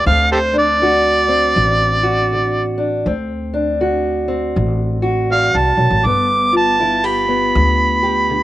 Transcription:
0.05 0.75 D2 medium
0.05 1.52 D2 medium
0.05 1.28 C4 soft
0.05 0.31 F5 medium
0.32 0.38 G4 soft
0.32 0.39 A4 soft
0.32 0.56 C5 medium
0.53 2.77 D4 medium
0.59 2.78 D5 loud
0.82 1.51 D3 medium
0.82 2.02 F#4 medium
1.28 3.03 C4 medium
1.56 3.02 A1 medium
1.56 2.25 A2 medium
2.03 3.03 F#4 medium
2.33 3.01 D3 medium
2.78 3.10 D4 soft
3.06 3.75 D2 medium
3.06 4.52 D2 medium
3.06 4.27 C4 medium
3.54 6.52 D4 medium
3.81 4.50 D3 medium
3.81 5.01 F#4 medium
4.28 6.03 C4 medium
4.56 5.50 A1 medium
4.56 5.25 A2 medium
5.02 6.02 F#4 medium
5.30 5.77 E2 medium
5.30 5.58 F5 medium
5.54 5.75 C2 medium
5.54 6.08 A5 medium
5.77 5.90 B1 medium
5.77 6.06 F#2 soft
5.90 6.04 A1 medium
6.05 7.51 G1 medium
6.05 6.75 G2 medium
6.05 7.28 B3 medium
6.05 6.54 D6 medium
6.52 8.43 F4 medium
6.57 7.07 A5 medium
6.80 7.50 D3 medium
6.80 7.04 E4 medium
7.04 8.02 G4 medium
7.04 8.43 B5 medium
7.28 8.43 B3 medium
7.55 8.43 D2 medium
7.55 8.25 D3 medium
8.03 8.43 G4 medium
8.30 8.43 D3 medium

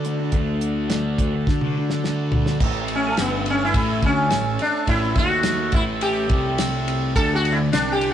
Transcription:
0.00 0.30 D3 medium
0.00 2.58 A3 medium
0.00 2.02 D4 medium
0.00 2.57 D4 soft
0.00 2.58 F#4 soft
0.00 2.58 A4 medium
0.05 0.33 D3 medium
0.05 0.21 A3 medium
0.05 0.19 D4 medium
0.05 closed hi-hat soft
0.20 0.35 A3 medium
0.20 0.36 D4 medium
0.32 1.43 D2 medium
0.32 0.88 D3 medium
0.32 kick medium
0.32 closed hi-hat medium
0.36 0.89 A3 medium
0.36 0.91 D4 medium
0.61 closed hi-hat medium
0.89 1.18 D3 medium
0.89 1.20 A3 medium
0.89 1.21 D4 loud
0.89 snare medium
0.89 closed hi-hat medium
1.18 1.62 D3 medium
1.18 1.34 A3 medium
1.18 1.34 D4 medium
1.18 kick medium
1.18 closed hi-hat medium
1.35 muted distorted electric guitar stroke soft
1.47 2.57 D3 medium
1.47 kick medium
1.47 snare soft
1.61 1.78 D4 medium
1.61 high tom soft
1.65 1.77 A3 soft
1.77 2.05 D3 medium
1.77 1.92 A3 medium
1.77 1.91 D4 medium
1.90 muted distorted electric guitar stroke soft
1.90 snare medium
2.04 2.34 D3 medium
2.04 2.35 A3 medium
2.04 snare medium
2.09 2.36 D4 medium
2.32 2.61 D3 medium
2.32 floor tom medium
2.36 2.51 A3 medium
2.36 2.48 D4 medium
2.46 2.61 D4 medium
2.46 snare medium
2.52 2.62 A3 medium
2.60 3.14 A1 medium
2.60 3.17 A2 loud
2.60 7.13 A3 medium
2.60 7.13 E5 medium
2.60 kick medium
2.60 crash medium
2.64 7.14 C#5 medium
2.64 8.13 A5 medium
2.88 ride medium
2.95 3.07 C#4 medium
3.08 3.20 A3 medium
3.17 3.71 G1 medium
3.17 3.75 G2 loud
3.17 3.49 B3 medium
3.17 snare loud
3.17 ride medium
3.17 tambourine medium
3.46 ride medium
3.50 3.63 C#4 medium
3.65 4.05 E4 medium
3.74 4.01 A1 medium
3.74 4.02 A2 medium
3.74 kick medium
3.74 ride medium
4.02 4.29 D2 medium
4.02 4.31 D3 loud
4.02 4.61 C#4 medium
4.02 kick medium
4.02 ride medium
4.30 4.57 A1 medium
4.30 4.55 A2 medium
4.30 snare medium
4.30 ride medium
4.30 tambourine medium
4.59 4.89 D4 medium
4.59 ride medium
4.87 5.15 A1 medium
4.87 5.16 A2 loud
4.87 5.18 E4 medium
4.87 kick medium
4.87 ride medium
5.15 5.69 D#2 medium
5.15 5.73 D#3 medium
5.15 5.74 F#4 medium
5.15 kick medium
5.15 ride medium
5.43 snare loud
5.43 ride medium
5.43 tambourine medium
5.72 6.26 A1 medium
5.72 6.28 A2 medium
5.72 5.82 E4 medium
5.72 kick loud
5.72 ride medium
6.01 6.55 G4 medium
6.01 ride medium
6.28 7.12 C2 medium
6.28 7.14 C3 loud
6.28 kick medium
6.28 ride medium
6.58 snare medium
6.58 ride medium
6.58 tambourine medium
6.88 ride medium
7.16 7.69 D2 medium
7.16 7.72 D3 loud
7.16 8.13 D3 medium
7.16 8.13 D4 medium
7.16 7.35 A4 loud
7.16 kick medium
7.16 ride medium
7.35 7.53 F#4 medium
7.45 ride medium
7.52 7.58 E4 medium
7.72 8.13 C2 medium
7.72 8.13 C3 loud
7.72 7.92 D4 medium
7.72 snare medium
7.72 ride medium
7.72 tambourine medium
7.92 8.11 G4 medium
8.01 ride medium

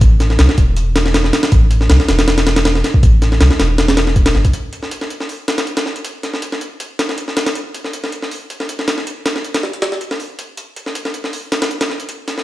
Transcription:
0.01 0.38 A1 loud
0.01 kick loud
0.01 closed hi-hat medium
0.20 snare soft
0.20 closed hi-hat medium
0.30 snare soft
0.39 0.48 C2 loud
0.39 snare loud
0.39 closed hi-hat medium
0.49 snare medium
0.58 1.32 E1 medium
0.58 kick medium
0.58 closed hi-hat medium
0.77 closed hi-hat medium
0.96 snare loud
0.96 closed hi-hat medium
1.06 snare medium
1.14 snare loud
1.14 closed hi-hat medium
1.24 snare soft
1.33 snare loud
1.33 closed hi-hat medium
1.43 snare loud
1.43 closed hi-hat medium
1.52 1.88 A1 loud
1.52 kick loud
1.52 closed hi-hat medium
1.71 closed hi-hat medium
1.81 snare soft
1.90 1.99 C2 loud
1.90 snare loud
1.90 closed hi-hat medium
2.00 snare soft
2.09 2.83 E1 medium
2.09 snare loud
2.09 closed hi-hat medium
2.19 snare loud
2.19 closed hi-hat medium
2.28 snare loud
2.28 closed hi-hat medium
2.38 snare loud
2.38 closed hi-hat medium
2.47 snare loud
2.47 closed hi-hat medium
2.56 snare loud
2.56 closed hi-hat medium
2.65 snare loud
2.65 closed hi-hat medium
2.75 snare soft
2.84 snare medium
2.84 closed hi-hat medium
2.94 kick medium
3.03 3.39 A1 loud
3.03 kick loud
3.03 closed hi-hat medium
3.22 snare soft
3.22 closed hi-hat medium
3.32 snare soft
3.41 3.50 C2 loud
3.41 snare loud
3.41 closed hi-hat medium
3.51 snare medium
3.60 4.34 E1 medium
3.60 snare loud
3.60 closed hi-hat medium
3.78 snare loud
3.78 closed hi-hat medium
3.88 snare loud
3.88 closed hi-hat medium
3.97 snare loud
3.97 closed hi-hat medium
4.07 snare soft
4.16 kick medium
4.16 closed hi-hat medium
4.26 snare loud
4.26 closed hi-hat medium
4.35 4.44 G1 loud
4.35 snare soft
4.45 kick medium
4.45 closed hi-hat medium
4.53 closed hi-hat medium
4.73 closed hi-hat medium
4.83 snare soft
4.91 closed hi-hat medium
5.01 snare soft
5.10 closed hi-hat medium
5.20 snare soft
5.29 open hi-hat medium
5.48 snare loud
5.48 closed hi-hat medium
5.58 snare medium
5.58 closed hi-hat medium
5.67 closed hi-hat medium
5.77 snare loud
5.77 closed hi-hat medium
5.86 snare soft
5.96 closed hi-hat medium
6.05 closed hi-hat medium
6.23 snare soft
6.23 closed hi-hat medium
6.34 snare soft
6.42 closed hi-hat medium
6.52 snare soft
6.61 closed hi-hat medium
6.80 closed hi-hat medium
6.99 snare loud
6.99 closed hi-hat medium
7.09 snare medium
7.18 closed hi-hat medium
7.28 snare soft
7.37 snare loud
7.37 closed hi-hat medium
7.46 snare medium
7.46 closed hi-hat medium
7.55 closed hi-hat medium
7.74 closed hi-hat medium
7.84 snare soft
7.93 closed hi-hat medium
8.04 snare soft
8.12 closed hi-hat medium
8.22 snare soft
8.31 open hi-hat medium
8.50 closed hi-hat medium
8.60 snare soft
8.69 closed hi-hat medium
8.79 snare soft
8.88 snare loud
8.88 closed hi-hat medium
8.98 snare soft
9.07 closed hi-hat medium
9.26 snare loud
9.26 closed hi-hat medium
9.36 snare soft
9.45 closed hi-hat medium
9.54 snare loud
9.54 closed hi-hat medium
9.63 snare soft
9.73 closed hi-hat medium
9.82 snare loud
9.82 closed hi-hat medium
9.92 snare soft
10.01 closed hi-hat medium
10.11 snare medium
10.20 open hi-hat medium
10.39 closed hi-hat medium
10.57 closed hi-hat medium
10.76 closed hi-hat medium
10.86 snare soft
10.95 closed hi-hat medium
11.05 snare soft
11.14 closed hi-hat medium
11.24 snare soft
11.33 open hi-hat medium
11.52 snare loud
11.52 closed hi-hat medium
11.62 snare loud
11.62 closed hi-hat medium
11.71 closed hi-hat medium
11.81 snare loud
11.81 closed hi-hat medium
11.90 snare soft
12.00 closed hi-hat medium
12.09 closed hi-hat medium
12.28 snare soft
12.28 closed hi-hat medium
12.38 snare soft

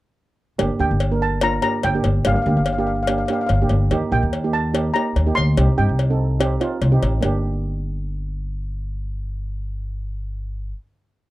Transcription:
0.59 0.68 G1 medium
0.59 0.72 A#3 medium
0.59 0.72 D4 medium
0.59 0.72 G4 medium
0.59 cowbell medium
0.79 0.88 D2 medium
0.79 0.99 A#3 medium
0.79 0.99 D4 medium
0.79 0.99 G4 medium
0.79 1.19 G5 medium
0.91 1.57 G1 medium
1.00 cowbell medium
1.12 1.30 A#3 medium
1.12 1.31 D4 medium
1.12 1.30 A#4 medium
1.22 1.43 A5 medium
1.41 1.55 A#3 medium
1.41 1.56 D4 medium
1.41 1.56 F4 medium
1.41 1.61 A#5 medium
1.41 cowbell medium
1.62 1.82 A#3 medium
1.62 1.82 D4 medium
1.62 1.82 G4 medium
1.62 1.84 A#5 medium
1.62 cowbell medium
1.83 2.00 G1 medium
1.83 2.27 G5 medium
1.83 cowbell medium
1.95 2.13 A#3 medium
1.95 2.14 D4 medium
1.95 2.14 G4 medium
2.04 2.21 G1 medium
2.04 cowbell medium
2.25 2.34 G1 medium
2.25 2.39 A#3 medium
2.25 2.39 D4 medium
2.25 2.39 G4 medium
2.25 2.34 F5 medium
2.25 cowbell medium
2.36 2.41 F5 medium
2.42 2.55 D2 medium
2.42 2.48 F5 medium
2.46 2.65 A#3 medium
2.46 2.65 D4 medium
2.46 2.65 G4 medium
2.46 2.56 F5 soft
2.57 3.23 G1 medium
2.57 2.63 F5 medium
2.64 2.71 F5 soft
2.64 cowbell medium
2.73 2.79 F5 medium
2.78 2.97 A#3 medium
2.78 2.97 D4 medium
2.78 2.97 G4 medium
2.78 2.85 F5 soft
2.87 2.93 F5 medium
2.95 3.01 F5 soft
3.03 3.08 F5 medium
3.07 3.22 A#3 medium
3.07 3.22 D4 medium
3.07 3.22 G4 medium
3.07 3.16 F5 soft
3.07 cowbell medium
3.18 3.24 F5 medium
3.26 3.31 F5 soft
3.26 cowbell medium
3.30 3.48 A#3 medium
3.30 3.48 D4 medium
3.30 3.48 G4 medium
3.30 3.39 F5 medium
3.41 3.45 F5 medium
3.46 3.66 G1 medium
3.46 3.53 F5 medium
3.46 cowbell medium
3.54 3.61 F5 soft
3.62 3.80 A#3 medium
3.62 3.80 D4 medium
3.62 3.80 G4 medium
3.69 3.87 G1 medium
3.69 cowbell soft
3.91 4.00 D#2 medium
3.91 4.04 A#3 medium
3.91 4.05 D#4 medium
3.91 4.04 G4 medium
3.91 cowbell medium
4.12 4.21 A#1 medium
4.12 4.31 A#3 medium
4.12 4.31 D#4 medium
4.12 4.31 G4 medium
4.12 4.55 G5 medium
4.23 4.89 D#2 medium
4.33 cowbell medium
4.44 4.63 A#3 medium
4.44 4.63 D#4 medium
4.44 4.63 G4 medium
4.53 4.96 A5 medium
4.74 4.87 A#3 medium
4.74 4.87 D#4 medium
4.74 4.87 G4 medium
4.74 cowbell medium
4.94 5.14 A#3 medium
4.94 5.14 D#4 medium
4.94 5.14 G4 medium
4.94 5.37 A#5 medium
4.94 cowbell medium
5.16 5.32 D#2 medium
5.16 cowbell medium
5.26 5.45 A#3 medium
5.26 5.45 D#4 medium
5.26 5.45 G4 medium
5.35 5.53 D2 medium
5.35 5.74 C6 loud
5.35 cowbell soft
5.57 5.66 C2 medium
5.57 5.70 C4 medium
5.57 5.70 D#4 medium
5.57 5.70 G4 medium
5.57 cowbell medium
5.77 5.87 G2 medium
5.77 5.96 C4 medium
5.77 5.96 D#4 medium
5.77 5.96 G4 medium
5.77 6.16 G5 medium
5.89 6.55 C2 medium
5.99 cowbell medium
6.10 6.28 C4 medium
6.10 6.28 D#4 medium
6.10 6.28 A4 medium
6.40 6.53 C4 medium
6.40 6.53 D#4 medium
6.40 6.53 G4 medium
6.40 cowbell medium
6.60 6.79 C4 medium
6.60 6.79 D#4 medium
6.60 6.79 F4 medium
6.60 cowbell medium
6.81 6.98 C2 medium
6.81 cowbell medium
6.92 7.11 C4 medium
6.92 7.11 D#4 medium
6.92 7.10 G4 medium
7.02 7.19 A1 medium
7.02 cowbell medium
7.21 10.71 G1 medium
7.21 10.69 A#3 medium
7.21 10.71 D4 medium
7.21 10.73 G4 medium
7.21 cowbell medium

